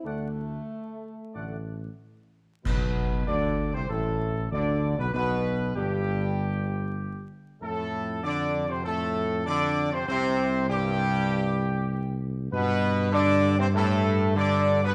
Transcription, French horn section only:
X:1
M:4/4
L:1/16
Q:1/4=97
K:G
V:1 name="French horn section"
A,12 z4 | B,4 D3 C A,4 D3 B, | B,4 G,8- G,2 z2 | A,4 D3 C A,4 D3 C |
C4 G,8- G,2 z2 | B,4 D3 C A,4 D3 B, |]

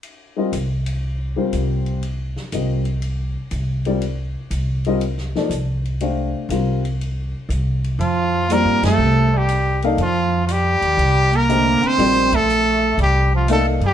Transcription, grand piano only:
X:1
M:4/4
L:1/8
Q:"Swing" 1/4=120
K:Fmix
V:1 name="Grand piano"
z [G,CFBe] z3 [G,CFBc]3 | z2 [G,CFBe] z4 [G,CFBd] | z3 [G,CFBe] z [F,B,EAd] z2 | [A,DGcf]2 [G,CFBf] z4 z |
z2 [G,CFcd]3 z2 [B,EAdf] | z6 [D,A,Gce]2 | [G,CFBd] z4 z [B,EAdf] z |]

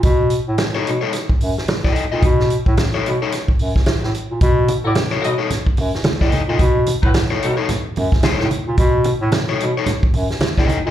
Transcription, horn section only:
X:1
M:4/4
L:1/16
Q:"Swing 16ths" 1/4=110
K:Bmix
V:1 name="Horn section"
z16 | z16 | z3 [FA=d] z2 [FA^d] z8 z | z3 [DFB] z2 [DFA] z8 z |
z16 |]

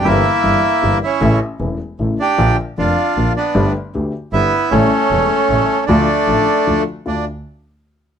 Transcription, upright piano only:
X:1
M:3/4
L:1/8
Q:1/4=154
K:Dm
V:1 name="Upright piano" clef=bass
[G,,,G,,E,G,B,G] z [G,,,G,,E,G,B,G] z [G,,,G,,E,G,B,G] z | [A,,,A,,^C,E,A,E] z [E,,,E,,C,E,A,E] z [A,,,A,,C,E,A,E] z | [B,,,B,,D,F,B,F] z [F,,,F,,D,F,B,F] z [B,,,B,,D,F,B,F] z | [G,,,G,,D,A,=B,G] z [D,,D,A,B,G] z [G,,,G,,D,A,B,G] z |
[A,,,A,,^C,G,A,E] z [E,,,E,,C,G,A,E] z [A,,,A,,C,G,A,E] z | [D,,D,F,A,F] z [A,,,A,,D,F,A,F] z [D,,D,F,A,F] z | [D,,A,DF] z4 z |]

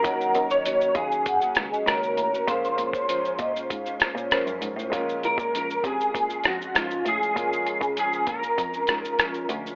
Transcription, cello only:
X:1
M:4/4
L:1/16
Q:1/4=98
K:Bbm
V:1 name="Cello" clef=bass
E,,2 E,,3 z E,,4 D,,2 D,,2 =A,,2 | B,,2 B,,3 z B,,2 A,,2 B,, B,, z G,, A,, =A,, | B,,3 B,,3 C,2 B,,2 F,,2 A,,2 =A,,2 | B,,3 D,3 B,,2 F,,2 A,,4 =D,,2 |]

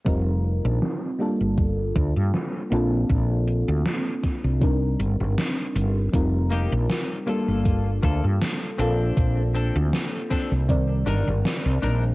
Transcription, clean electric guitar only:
X:1
M:4/4
L:1/16
Q:"Swing 16ths" 1/4=79
K:Bb
V:1 name="Clean electric guitar"
z16 | z16 | z2 [B,EG] z3 [B,FA]4 [B,FA] z3 [CDA]2- | [CDA]2 [CDA] z3 [CDA] z3 [DEB] z3 [DEB] z |]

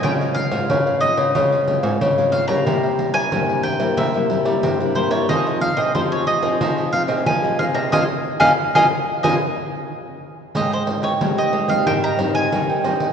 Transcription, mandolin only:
X:1
M:4/4
L:1/16
Q:1/4=91
K:Fm
V:1 name="Mandolin"
g2 f4 e8 f b- | b3 a3 g2 =e6 c d | e2 f e c d e4 f2 a2 f b | [efa] z2 [efa] z [efa] z2 [efa] z6 z |
[K:Ab] e c2 d2 e2 f g b2 a3 z2 |]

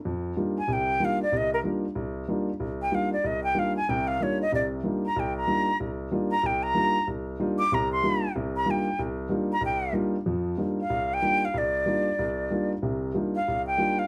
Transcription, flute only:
X:1
M:4/4
L:1/8
Q:"Swing" 1/4=188
K:Cm
V:1 name="Flute"
z3 a g2 f d | e B z6 | z g f d e g f a | g f _d e =d z2 b |
g b3 z3 b | g b3 z3 d' | b c'3 z b g2 | z3 b g2 z2 |
z3 f2 g2 f | d6- d z | z3 f2 g2 f |]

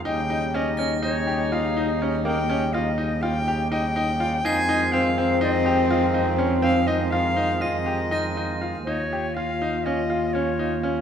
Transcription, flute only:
X:1
M:9/8
L:1/8
Q:3/8=82
K:Ebmix
V:1 name="Flute"
g2 e2 d2 f2 z | g2 e2 g2 g3 | a2 f2 e2 e2 z | f e f2 e4 z |
d2 f2 e2 d2 z |]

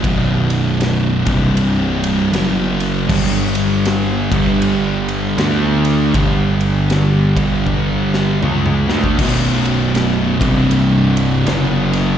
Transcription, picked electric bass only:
X:1
M:4/4
L:1/8
Q:"Swing" 1/4=79
K:Glyd
V:1 name="Picked electric bass" clef=bass
B,,,,3 =C,,,3 F,,,2 | G,,,3 G,,,3 D,,2 | G,,,3 G,,,3 C,, D,, | [K:Clyd] B,,,,3 C,,,3 F,,,2 |]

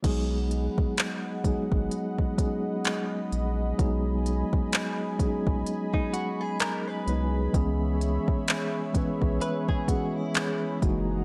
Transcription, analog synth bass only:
X:1
M:4/4
L:1/16
Q:"Swing 16ths" 1/4=64
K:B
V:1 name="Analog synth bass" clef=bass
B,,,3 z3 G,,, G,,, z6 A,,,2 | B,,,3 z3 A,,, A,,, z6 =C,,2 | C,,3 z3 B,,, B,,, z6 F,,,2 |]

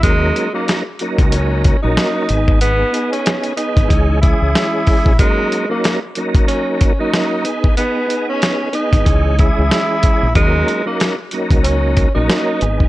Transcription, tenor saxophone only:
X:1
M:4/4
L:1/16
Q:"Swing 16ths" 1/4=93
K:D#phr
V:1 name="Tenor saxophone"
G,3 A,2 z3 C3 D4- D | B,3 C3 D4 E6 | G,3 A,2 z3 C3 D4- D | B,3 C3 D4 E6 |
G,3 A,2 z3 C3 D4- D |]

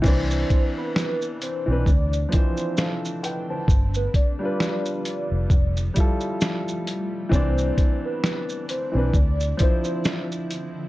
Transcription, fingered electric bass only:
X:1
M:4/4
L:1/16
Q:"Swing 16ths" 1/4=66
K:C
V:1 name="Fingered electric bass" clef=bass
C,,2 z4 z B,,, D,,2 z6 | G,,,2 z4 z F,,, F,,,2 z6 | C,,2 z4 z B,,, D,,2 z6 |]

